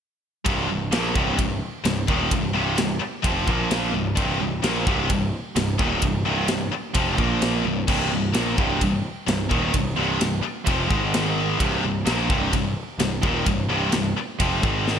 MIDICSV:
0, 0, Header, 1, 6, 480
1, 0, Start_track
1, 0, Key_signature, -3, "minor"
1, 0, Tempo, 464756
1, 475, Time_signature, 4, 2, 24, 8
1, 15483, End_track
2, 0, Start_track
2, 0, Title_t, "Distorted electric guitar"
2, 0, Program_c, 0, 30
2, 464, Note_on_c, 0, 36, 86
2, 470, Note_on_c, 0, 43, 92
2, 478, Note_on_c, 0, 48, 95
2, 692, Note_off_c, 0, 36, 0
2, 701, Note_off_c, 0, 43, 0
2, 705, Note_on_c, 0, 36, 67
2, 709, Note_off_c, 0, 48, 0
2, 713, Note_on_c, 0, 43, 71
2, 901, Note_off_c, 0, 36, 0
2, 905, Note_off_c, 0, 43, 0
2, 947, Note_on_c, 0, 46, 100
2, 950, Note_on_c, 0, 53, 99
2, 954, Note_on_c, 0, 58, 107
2, 1177, Note_off_c, 0, 46, 0
2, 1181, Note_on_c, 0, 36, 97
2, 1183, Note_off_c, 0, 53, 0
2, 1186, Note_off_c, 0, 58, 0
2, 1187, Note_on_c, 0, 43, 93
2, 1192, Note_on_c, 0, 48, 101
2, 1416, Note_off_c, 0, 36, 0
2, 1418, Note_off_c, 0, 43, 0
2, 1425, Note_off_c, 0, 48, 0
2, 1428, Note_on_c, 0, 36, 73
2, 1430, Note_on_c, 0, 43, 77
2, 1621, Note_off_c, 0, 36, 0
2, 1622, Note_off_c, 0, 43, 0
2, 1901, Note_on_c, 0, 36, 53
2, 1906, Note_on_c, 0, 43, 64
2, 2097, Note_off_c, 0, 36, 0
2, 2099, Note_off_c, 0, 43, 0
2, 2142, Note_on_c, 0, 39, 89
2, 2148, Note_on_c, 0, 46, 90
2, 2153, Note_on_c, 0, 51, 112
2, 2376, Note_off_c, 0, 39, 0
2, 2380, Note_on_c, 0, 36, 60
2, 2381, Note_off_c, 0, 46, 0
2, 2383, Note_off_c, 0, 51, 0
2, 2385, Note_on_c, 0, 43, 70
2, 2576, Note_off_c, 0, 36, 0
2, 2578, Note_off_c, 0, 43, 0
2, 2618, Note_on_c, 0, 36, 86
2, 2624, Note_on_c, 0, 43, 83
2, 2627, Note_on_c, 0, 48, 102
2, 2847, Note_off_c, 0, 36, 0
2, 2848, Note_off_c, 0, 43, 0
2, 2859, Note_on_c, 0, 36, 65
2, 2860, Note_off_c, 0, 48, 0
2, 2860, Note_on_c, 0, 43, 70
2, 3055, Note_off_c, 0, 36, 0
2, 3055, Note_off_c, 0, 43, 0
2, 3332, Note_on_c, 0, 41, 89
2, 3339, Note_on_c, 0, 48, 102
2, 3339, Note_on_c, 0, 53, 98
2, 3567, Note_off_c, 0, 41, 0
2, 3567, Note_off_c, 0, 53, 0
2, 3571, Note_on_c, 0, 46, 94
2, 3575, Note_off_c, 0, 48, 0
2, 3579, Note_on_c, 0, 53, 107
2, 3583, Note_on_c, 0, 58, 99
2, 4050, Note_off_c, 0, 46, 0
2, 4053, Note_off_c, 0, 53, 0
2, 4054, Note_on_c, 0, 36, 62
2, 4056, Note_off_c, 0, 58, 0
2, 4058, Note_on_c, 0, 43, 67
2, 4251, Note_off_c, 0, 36, 0
2, 4253, Note_off_c, 0, 43, 0
2, 4291, Note_on_c, 0, 36, 80
2, 4293, Note_on_c, 0, 43, 85
2, 4300, Note_on_c, 0, 48, 88
2, 4526, Note_off_c, 0, 36, 0
2, 4531, Note_off_c, 0, 43, 0
2, 4534, Note_off_c, 0, 48, 0
2, 4539, Note_on_c, 0, 36, 59
2, 4544, Note_on_c, 0, 43, 66
2, 4733, Note_off_c, 0, 36, 0
2, 4735, Note_off_c, 0, 43, 0
2, 4775, Note_on_c, 0, 46, 99
2, 4782, Note_on_c, 0, 53, 99
2, 4783, Note_on_c, 0, 58, 109
2, 5011, Note_off_c, 0, 46, 0
2, 5015, Note_off_c, 0, 53, 0
2, 5015, Note_off_c, 0, 58, 0
2, 5017, Note_on_c, 0, 36, 88
2, 5023, Note_on_c, 0, 43, 85
2, 5027, Note_on_c, 0, 48, 85
2, 5245, Note_off_c, 0, 36, 0
2, 5249, Note_off_c, 0, 43, 0
2, 5257, Note_off_c, 0, 48, 0
2, 5257, Note_on_c, 0, 36, 62
2, 5262, Note_on_c, 0, 43, 82
2, 5451, Note_off_c, 0, 36, 0
2, 5453, Note_off_c, 0, 43, 0
2, 5742, Note_on_c, 0, 36, 67
2, 5745, Note_on_c, 0, 43, 69
2, 5934, Note_off_c, 0, 36, 0
2, 5935, Note_off_c, 0, 43, 0
2, 5973, Note_on_c, 0, 39, 97
2, 5976, Note_on_c, 0, 46, 90
2, 5979, Note_on_c, 0, 51, 103
2, 6210, Note_off_c, 0, 39, 0
2, 6211, Note_off_c, 0, 46, 0
2, 6212, Note_off_c, 0, 51, 0
2, 6214, Note_on_c, 0, 36, 67
2, 6217, Note_on_c, 0, 43, 59
2, 6409, Note_off_c, 0, 36, 0
2, 6411, Note_off_c, 0, 43, 0
2, 6457, Note_on_c, 0, 36, 86
2, 6460, Note_on_c, 0, 43, 85
2, 6469, Note_on_c, 0, 48, 94
2, 6684, Note_off_c, 0, 36, 0
2, 6687, Note_off_c, 0, 43, 0
2, 6696, Note_on_c, 0, 36, 64
2, 6697, Note_off_c, 0, 48, 0
2, 6700, Note_on_c, 0, 43, 78
2, 6890, Note_off_c, 0, 36, 0
2, 6892, Note_off_c, 0, 43, 0
2, 7172, Note_on_c, 0, 41, 84
2, 7176, Note_on_c, 0, 48, 102
2, 7183, Note_on_c, 0, 53, 117
2, 7403, Note_off_c, 0, 53, 0
2, 7408, Note_off_c, 0, 41, 0
2, 7411, Note_off_c, 0, 48, 0
2, 7412, Note_on_c, 0, 46, 94
2, 7415, Note_on_c, 0, 53, 94
2, 7421, Note_on_c, 0, 58, 100
2, 7889, Note_off_c, 0, 46, 0
2, 7890, Note_off_c, 0, 53, 0
2, 7893, Note_off_c, 0, 58, 0
2, 7900, Note_on_c, 0, 36, 69
2, 7906, Note_on_c, 0, 43, 68
2, 8092, Note_off_c, 0, 36, 0
2, 8094, Note_off_c, 0, 43, 0
2, 8132, Note_on_c, 0, 36, 84
2, 8138, Note_on_c, 0, 43, 90
2, 8141, Note_on_c, 0, 48, 102
2, 8359, Note_off_c, 0, 36, 0
2, 8362, Note_off_c, 0, 43, 0
2, 8371, Note_on_c, 0, 36, 60
2, 8373, Note_off_c, 0, 48, 0
2, 8375, Note_on_c, 0, 43, 62
2, 8567, Note_off_c, 0, 36, 0
2, 8569, Note_off_c, 0, 43, 0
2, 8607, Note_on_c, 0, 46, 102
2, 8607, Note_on_c, 0, 53, 100
2, 8612, Note_on_c, 0, 58, 113
2, 8843, Note_off_c, 0, 46, 0
2, 8846, Note_off_c, 0, 53, 0
2, 8847, Note_on_c, 0, 36, 84
2, 8848, Note_off_c, 0, 58, 0
2, 8851, Note_on_c, 0, 43, 92
2, 8859, Note_on_c, 0, 48, 98
2, 9081, Note_off_c, 0, 36, 0
2, 9088, Note_off_c, 0, 43, 0
2, 9092, Note_off_c, 0, 48, 0
2, 9093, Note_on_c, 0, 36, 64
2, 9099, Note_on_c, 0, 43, 70
2, 9289, Note_off_c, 0, 36, 0
2, 9291, Note_off_c, 0, 43, 0
2, 9571, Note_on_c, 0, 36, 61
2, 9574, Note_on_c, 0, 43, 67
2, 9768, Note_off_c, 0, 36, 0
2, 9769, Note_off_c, 0, 43, 0
2, 9804, Note_on_c, 0, 39, 85
2, 9812, Note_on_c, 0, 46, 97
2, 9816, Note_on_c, 0, 51, 102
2, 10045, Note_off_c, 0, 39, 0
2, 10049, Note_off_c, 0, 46, 0
2, 10051, Note_off_c, 0, 51, 0
2, 10051, Note_on_c, 0, 36, 52
2, 10055, Note_on_c, 0, 43, 61
2, 10248, Note_off_c, 0, 36, 0
2, 10250, Note_off_c, 0, 43, 0
2, 10291, Note_on_c, 0, 36, 86
2, 10296, Note_on_c, 0, 43, 91
2, 10299, Note_on_c, 0, 48, 98
2, 10515, Note_off_c, 0, 36, 0
2, 10523, Note_off_c, 0, 43, 0
2, 10528, Note_on_c, 0, 36, 78
2, 10533, Note_off_c, 0, 48, 0
2, 10535, Note_on_c, 0, 43, 66
2, 10727, Note_off_c, 0, 36, 0
2, 10730, Note_off_c, 0, 43, 0
2, 11013, Note_on_c, 0, 41, 104
2, 11021, Note_on_c, 0, 48, 99
2, 11024, Note_on_c, 0, 53, 108
2, 11249, Note_off_c, 0, 41, 0
2, 11253, Note_on_c, 0, 44, 87
2, 11255, Note_off_c, 0, 48, 0
2, 11256, Note_off_c, 0, 53, 0
2, 11260, Note_on_c, 0, 51, 93
2, 11265, Note_on_c, 0, 56, 102
2, 11969, Note_off_c, 0, 44, 0
2, 11972, Note_off_c, 0, 51, 0
2, 11974, Note_on_c, 0, 36, 90
2, 11976, Note_on_c, 0, 43, 82
2, 11978, Note_off_c, 0, 56, 0
2, 11984, Note_on_c, 0, 48, 104
2, 12199, Note_off_c, 0, 36, 0
2, 12203, Note_off_c, 0, 43, 0
2, 12212, Note_on_c, 0, 36, 60
2, 12215, Note_on_c, 0, 43, 71
2, 12217, Note_off_c, 0, 48, 0
2, 12410, Note_off_c, 0, 36, 0
2, 12412, Note_off_c, 0, 43, 0
2, 12452, Note_on_c, 0, 46, 95
2, 12455, Note_on_c, 0, 53, 96
2, 12464, Note_on_c, 0, 58, 118
2, 12687, Note_off_c, 0, 46, 0
2, 12691, Note_on_c, 0, 36, 76
2, 12693, Note_off_c, 0, 53, 0
2, 12698, Note_off_c, 0, 58, 0
2, 12701, Note_on_c, 0, 43, 87
2, 12702, Note_on_c, 0, 48, 99
2, 12927, Note_off_c, 0, 36, 0
2, 12931, Note_off_c, 0, 43, 0
2, 12937, Note_off_c, 0, 48, 0
2, 12940, Note_on_c, 0, 36, 68
2, 12944, Note_on_c, 0, 43, 73
2, 13135, Note_off_c, 0, 36, 0
2, 13137, Note_off_c, 0, 43, 0
2, 13423, Note_on_c, 0, 36, 62
2, 13427, Note_on_c, 0, 43, 74
2, 13618, Note_off_c, 0, 36, 0
2, 13620, Note_off_c, 0, 43, 0
2, 13656, Note_on_c, 0, 39, 102
2, 13660, Note_on_c, 0, 46, 99
2, 13663, Note_on_c, 0, 51, 104
2, 13896, Note_off_c, 0, 39, 0
2, 13898, Note_off_c, 0, 46, 0
2, 13899, Note_off_c, 0, 51, 0
2, 13905, Note_on_c, 0, 36, 51
2, 13909, Note_on_c, 0, 43, 61
2, 14100, Note_off_c, 0, 36, 0
2, 14102, Note_off_c, 0, 43, 0
2, 14142, Note_on_c, 0, 36, 81
2, 14149, Note_on_c, 0, 43, 88
2, 14157, Note_on_c, 0, 48, 87
2, 14371, Note_off_c, 0, 36, 0
2, 14375, Note_off_c, 0, 43, 0
2, 14383, Note_on_c, 0, 36, 69
2, 14388, Note_off_c, 0, 48, 0
2, 14388, Note_on_c, 0, 43, 78
2, 14580, Note_off_c, 0, 36, 0
2, 14583, Note_off_c, 0, 43, 0
2, 14873, Note_on_c, 0, 41, 105
2, 14878, Note_on_c, 0, 48, 104
2, 14885, Note_on_c, 0, 53, 100
2, 15121, Note_off_c, 0, 41, 0
2, 15121, Note_on_c, 0, 44, 89
2, 15127, Note_off_c, 0, 48, 0
2, 15127, Note_on_c, 0, 51, 108
2, 15131, Note_off_c, 0, 53, 0
2, 15131, Note_on_c, 0, 56, 108
2, 15483, Note_off_c, 0, 44, 0
2, 15483, Note_off_c, 0, 51, 0
2, 15483, Note_off_c, 0, 56, 0
2, 15483, End_track
3, 0, Start_track
3, 0, Title_t, "Picked electric bass"
3, 0, Program_c, 1, 34
3, 475, Note_on_c, 1, 24, 85
3, 698, Note_off_c, 1, 24, 0
3, 717, Note_on_c, 1, 24, 78
3, 938, Note_off_c, 1, 24, 0
3, 955, Note_on_c, 1, 34, 80
3, 1177, Note_off_c, 1, 34, 0
3, 1195, Note_on_c, 1, 24, 86
3, 1416, Note_off_c, 1, 24, 0
3, 1430, Note_on_c, 1, 24, 66
3, 1653, Note_off_c, 1, 24, 0
3, 1910, Note_on_c, 1, 24, 81
3, 2133, Note_off_c, 1, 24, 0
3, 2153, Note_on_c, 1, 27, 99
3, 2374, Note_off_c, 1, 27, 0
3, 2389, Note_on_c, 1, 24, 66
3, 2611, Note_off_c, 1, 24, 0
3, 2629, Note_on_c, 1, 24, 84
3, 2851, Note_off_c, 1, 24, 0
3, 2870, Note_on_c, 1, 24, 71
3, 3091, Note_off_c, 1, 24, 0
3, 3349, Note_on_c, 1, 29, 84
3, 3570, Note_off_c, 1, 29, 0
3, 3591, Note_on_c, 1, 34, 110
3, 4034, Note_off_c, 1, 34, 0
3, 4067, Note_on_c, 1, 24, 89
3, 4288, Note_off_c, 1, 24, 0
3, 4306, Note_on_c, 1, 24, 85
3, 4528, Note_off_c, 1, 24, 0
3, 4546, Note_on_c, 1, 24, 76
3, 4768, Note_off_c, 1, 24, 0
3, 4779, Note_on_c, 1, 34, 80
3, 5004, Note_off_c, 1, 34, 0
3, 5027, Note_on_c, 1, 24, 91
3, 5248, Note_off_c, 1, 24, 0
3, 5266, Note_on_c, 1, 24, 67
3, 5487, Note_off_c, 1, 24, 0
3, 5740, Note_on_c, 1, 24, 87
3, 5964, Note_off_c, 1, 24, 0
3, 5985, Note_on_c, 1, 27, 93
3, 6206, Note_off_c, 1, 27, 0
3, 6222, Note_on_c, 1, 24, 66
3, 6444, Note_off_c, 1, 24, 0
3, 6463, Note_on_c, 1, 24, 89
3, 6685, Note_off_c, 1, 24, 0
3, 6692, Note_on_c, 1, 24, 75
3, 6919, Note_off_c, 1, 24, 0
3, 7177, Note_on_c, 1, 29, 90
3, 7401, Note_off_c, 1, 29, 0
3, 7421, Note_on_c, 1, 34, 99
3, 7867, Note_off_c, 1, 34, 0
3, 7903, Note_on_c, 1, 24, 85
3, 8125, Note_off_c, 1, 24, 0
3, 8136, Note_on_c, 1, 24, 81
3, 8361, Note_off_c, 1, 24, 0
3, 8381, Note_on_c, 1, 24, 75
3, 8603, Note_off_c, 1, 24, 0
3, 8625, Note_on_c, 1, 34, 88
3, 8846, Note_off_c, 1, 34, 0
3, 8861, Note_on_c, 1, 24, 88
3, 9083, Note_off_c, 1, 24, 0
3, 9104, Note_on_c, 1, 24, 74
3, 9325, Note_off_c, 1, 24, 0
3, 9582, Note_on_c, 1, 24, 88
3, 9805, Note_off_c, 1, 24, 0
3, 9819, Note_on_c, 1, 27, 90
3, 10043, Note_off_c, 1, 27, 0
3, 10058, Note_on_c, 1, 24, 69
3, 10283, Note_off_c, 1, 24, 0
3, 10292, Note_on_c, 1, 24, 90
3, 10519, Note_off_c, 1, 24, 0
3, 10533, Note_on_c, 1, 24, 69
3, 10760, Note_off_c, 1, 24, 0
3, 11021, Note_on_c, 1, 29, 89
3, 11245, Note_off_c, 1, 29, 0
3, 11261, Note_on_c, 1, 32, 101
3, 11942, Note_off_c, 1, 32, 0
3, 11985, Note_on_c, 1, 24, 85
3, 12208, Note_off_c, 1, 24, 0
3, 12214, Note_on_c, 1, 24, 87
3, 12442, Note_off_c, 1, 24, 0
3, 12452, Note_on_c, 1, 34, 93
3, 12682, Note_off_c, 1, 34, 0
3, 12699, Note_on_c, 1, 24, 102
3, 12926, Note_off_c, 1, 24, 0
3, 12940, Note_on_c, 1, 24, 71
3, 13167, Note_off_c, 1, 24, 0
3, 13410, Note_on_c, 1, 24, 85
3, 13642, Note_off_c, 1, 24, 0
3, 13665, Note_on_c, 1, 27, 95
3, 13891, Note_off_c, 1, 27, 0
3, 13906, Note_on_c, 1, 24, 77
3, 14129, Note_off_c, 1, 24, 0
3, 14135, Note_on_c, 1, 24, 92
3, 14367, Note_off_c, 1, 24, 0
3, 14383, Note_on_c, 1, 24, 76
3, 14611, Note_off_c, 1, 24, 0
3, 14869, Note_on_c, 1, 29, 86
3, 15096, Note_off_c, 1, 29, 0
3, 15112, Note_on_c, 1, 32, 106
3, 15483, Note_off_c, 1, 32, 0
3, 15483, End_track
4, 0, Start_track
4, 0, Title_t, "Muted distorted electric guitar strokes"
4, 3094, Note_on_c, 9, 29, 52
4, 3197, Note_off_c, 9, 29, 0
4, 6942, Note_on_c, 9, 29, 55
4, 7045, Note_off_c, 9, 29, 0
4, 10771, Note_on_c, 9, 29, 62
4, 10874, Note_off_c, 9, 29, 0
4, 14638, Note_on_c, 9, 29, 52
4, 14742, Note_off_c, 9, 29, 0
4, 15483, End_track
5, 0, Start_track
5, 0, Title_t, "Muted picked electric bass strokes"
5, 3105, Note_on_c, 9, 29, 42
5, 3208, Note_off_c, 9, 29, 0
5, 6938, Note_on_c, 9, 29, 42
5, 7041, Note_off_c, 9, 29, 0
5, 10772, Note_on_c, 9, 29, 41
5, 10875, Note_off_c, 9, 29, 0
5, 14626, Note_on_c, 9, 29, 39
5, 14729, Note_off_c, 9, 29, 0
5, 15483, End_track
6, 0, Start_track
6, 0, Title_t, "Drums"
6, 476, Note_on_c, 9, 36, 110
6, 477, Note_on_c, 9, 53, 66
6, 579, Note_off_c, 9, 36, 0
6, 580, Note_off_c, 9, 53, 0
6, 954, Note_on_c, 9, 53, 73
6, 961, Note_on_c, 9, 38, 118
6, 1058, Note_off_c, 9, 53, 0
6, 1064, Note_off_c, 9, 38, 0
6, 1193, Note_on_c, 9, 36, 119
6, 1297, Note_off_c, 9, 36, 0
6, 1432, Note_on_c, 9, 36, 90
6, 1433, Note_on_c, 9, 53, 71
6, 1535, Note_off_c, 9, 36, 0
6, 1536, Note_off_c, 9, 53, 0
6, 1913, Note_on_c, 9, 53, 73
6, 1919, Note_on_c, 9, 38, 97
6, 2016, Note_off_c, 9, 53, 0
6, 2022, Note_off_c, 9, 38, 0
6, 2152, Note_on_c, 9, 36, 102
6, 2255, Note_off_c, 9, 36, 0
6, 2389, Note_on_c, 9, 36, 90
6, 2390, Note_on_c, 9, 53, 77
6, 2492, Note_off_c, 9, 36, 0
6, 2493, Note_off_c, 9, 53, 0
6, 2868, Note_on_c, 9, 53, 73
6, 2875, Note_on_c, 9, 38, 114
6, 2972, Note_off_c, 9, 53, 0
6, 2978, Note_off_c, 9, 38, 0
6, 3350, Note_on_c, 9, 36, 109
6, 3354, Note_on_c, 9, 53, 66
6, 3453, Note_off_c, 9, 36, 0
6, 3457, Note_off_c, 9, 53, 0
6, 3589, Note_on_c, 9, 36, 94
6, 3693, Note_off_c, 9, 36, 0
6, 3831, Note_on_c, 9, 53, 66
6, 3837, Note_on_c, 9, 38, 110
6, 3934, Note_off_c, 9, 53, 0
6, 3940, Note_off_c, 9, 38, 0
6, 4308, Note_on_c, 9, 36, 116
6, 4308, Note_on_c, 9, 53, 72
6, 4411, Note_off_c, 9, 53, 0
6, 4412, Note_off_c, 9, 36, 0
6, 4789, Note_on_c, 9, 53, 71
6, 4795, Note_on_c, 9, 38, 107
6, 4892, Note_off_c, 9, 53, 0
6, 4898, Note_off_c, 9, 38, 0
6, 5029, Note_on_c, 9, 36, 113
6, 5132, Note_off_c, 9, 36, 0
6, 5264, Note_on_c, 9, 53, 76
6, 5266, Note_on_c, 9, 36, 86
6, 5367, Note_off_c, 9, 53, 0
6, 5370, Note_off_c, 9, 36, 0
6, 5745, Note_on_c, 9, 53, 77
6, 5751, Note_on_c, 9, 38, 105
6, 5848, Note_off_c, 9, 53, 0
6, 5854, Note_off_c, 9, 38, 0
6, 5983, Note_on_c, 9, 36, 106
6, 6086, Note_off_c, 9, 36, 0
6, 6215, Note_on_c, 9, 53, 78
6, 6223, Note_on_c, 9, 36, 93
6, 6319, Note_off_c, 9, 53, 0
6, 6326, Note_off_c, 9, 36, 0
6, 6694, Note_on_c, 9, 53, 71
6, 6700, Note_on_c, 9, 38, 118
6, 6798, Note_off_c, 9, 53, 0
6, 6804, Note_off_c, 9, 38, 0
6, 7172, Note_on_c, 9, 53, 69
6, 7179, Note_on_c, 9, 36, 99
6, 7276, Note_off_c, 9, 53, 0
6, 7282, Note_off_c, 9, 36, 0
6, 7419, Note_on_c, 9, 36, 95
6, 7523, Note_off_c, 9, 36, 0
6, 7662, Note_on_c, 9, 53, 65
6, 7668, Note_on_c, 9, 38, 116
6, 7765, Note_off_c, 9, 53, 0
6, 7771, Note_off_c, 9, 38, 0
6, 8137, Note_on_c, 9, 49, 92
6, 8140, Note_on_c, 9, 36, 99
6, 8241, Note_off_c, 9, 49, 0
6, 8243, Note_off_c, 9, 36, 0
6, 8618, Note_on_c, 9, 53, 72
6, 8624, Note_on_c, 9, 38, 121
6, 8721, Note_off_c, 9, 53, 0
6, 8727, Note_off_c, 9, 38, 0
6, 8863, Note_on_c, 9, 36, 114
6, 8966, Note_off_c, 9, 36, 0
6, 9102, Note_on_c, 9, 36, 82
6, 9102, Note_on_c, 9, 53, 73
6, 9206, Note_off_c, 9, 36, 0
6, 9206, Note_off_c, 9, 53, 0
6, 9586, Note_on_c, 9, 53, 70
6, 9592, Note_on_c, 9, 38, 118
6, 9689, Note_off_c, 9, 53, 0
6, 9695, Note_off_c, 9, 38, 0
6, 9823, Note_on_c, 9, 36, 95
6, 9926, Note_off_c, 9, 36, 0
6, 10057, Note_on_c, 9, 53, 82
6, 10061, Note_on_c, 9, 36, 94
6, 10160, Note_off_c, 9, 53, 0
6, 10164, Note_off_c, 9, 36, 0
6, 10543, Note_on_c, 9, 53, 76
6, 10550, Note_on_c, 9, 38, 106
6, 10647, Note_off_c, 9, 53, 0
6, 10653, Note_off_c, 9, 38, 0
6, 11016, Note_on_c, 9, 53, 66
6, 11021, Note_on_c, 9, 36, 104
6, 11119, Note_off_c, 9, 53, 0
6, 11124, Note_off_c, 9, 36, 0
6, 11263, Note_on_c, 9, 36, 105
6, 11366, Note_off_c, 9, 36, 0
6, 11505, Note_on_c, 9, 53, 69
6, 11511, Note_on_c, 9, 38, 101
6, 11608, Note_off_c, 9, 53, 0
6, 11615, Note_off_c, 9, 38, 0
6, 11983, Note_on_c, 9, 36, 110
6, 11985, Note_on_c, 9, 53, 74
6, 12086, Note_off_c, 9, 36, 0
6, 12089, Note_off_c, 9, 53, 0
6, 12461, Note_on_c, 9, 53, 72
6, 12468, Note_on_c, 9, 38, 125
6, 12565, Note_off_c, 9, 53, 0
6, 12571, Note_off_c, 9, 38, 0
6, 12703, Note_on_c, 9, 36, 115
6, 12806, Note_off_c, 9, 36, 0
6, 12943, Note_on_c, 9, 36, 85
6, 12943, Note_on_c, 9, 53, 70
6, 13046, Note_off_c, 9, 36, 0
6, 13046, Note_off_c, 9, 53, 0
6, 13424, Note_on_c, 9, 53, 71
6, 13430, Note_on_c, 9, 38, 101
6, 13527, Note_off_c, 9, 53, 0
6, 13533, Note_off_c, 9, 38, 0
6, 13667, Note_on_c, 9, 36, 104
6, 13770, Note_off_c, 9, 36, 0
6, 13904, Note_on_c, 9, 53, 70
6, 13907, Note_on_c, 9, 36, 99
6, 14008, Note_off_c, 9, 53, 0
6, 14010, Note_off_c, 9, 36, 0
6, 14379, Note_on_c, 9, 53, 76
6, 14385, Note_on_c, 9, 38, 104
6, 14482, Note_off_c, 9, 53, 0
6, 14489, Note_off_c, 9, 38, 0
6, 14870, Note_on_c, 9, 53, 71
6, 14872, Note_on_c, 9, 36, 97
6, 14973, Note_off_c, 9, 53, 0
6, 14975, Note_off_c, 9, 36, 0
6, 15114, Note_on_c, 9, 36, 97
6, 15217, Note_off_c, 9, 36, 0
6, 15364, Note_on_c, 9, 38, 64
6, 15467, Note_off_c, 9, 38, 0
6, 15483, End_track
0, 0, End_of_file